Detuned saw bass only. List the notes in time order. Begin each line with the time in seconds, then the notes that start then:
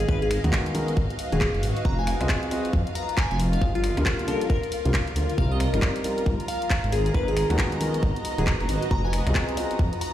0.08 G#1
0.44 D#2
0.97 G#1
1.32 D#1
1.54 F#1
1.63 G#1
1.85 F1
2.21 C2
2.73 F2
3.31 F1
3.61 G1
3.97 D2
4.85 C2
5.16 D2
5.38 C2
5.74 G1
6.26 G1
6.84 G#1
7.14 G#1
7.50 D#2
8.03 G#1
8.38 D#1
8.60 F#1
8.69 G#1
8.91 F1
9.27 C2
9.79 F2